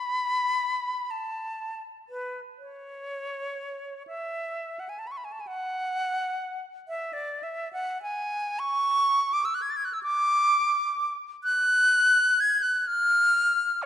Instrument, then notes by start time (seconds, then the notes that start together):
flute
Already playing: B5
1.11 A5
2.09 B4
2.58 C#5
4.07 E5
4.80 F#5
4.89 G#5
4.99 A5
5.07 B5
5.11 C#6
5.17 B5
5.24 G#5
5.32 A5
5.40 G#5
5.47 F#5
6.88 E5
7.13 D5
7.43 E5
7.73 F#5
8.02 G#5
8.59 C#6
9.33 D6
9.45 E6
9.55 F#6
9.62 G#6
9.70 A6
9.76 G#6
9.85 F#6
9.93 E6
10.03 D6
11.44 F#6
12.40 G#6
12.62 F#6
12.87 F6
13.83 C#5